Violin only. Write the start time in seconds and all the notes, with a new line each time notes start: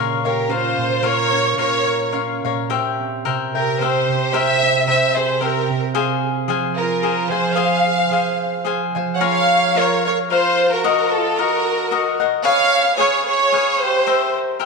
0.25 G4
0.50 F4
1.05 A#4
1.58 A#4
3.56 G4
3.81 G4
4.35 C5
4.89 C5
5.16 G#4
5.42 G4
6.77 F4
7.30 G#4
7.55 C5
9.15 C#5
9.23 C#5
9.77 A#4
10.07 A#4
10.32 F4
10.74 F#4
11.17 F4
11.42 F#4
12.46 C#5
12.99 G#4
13.26 G#4
13.83 G4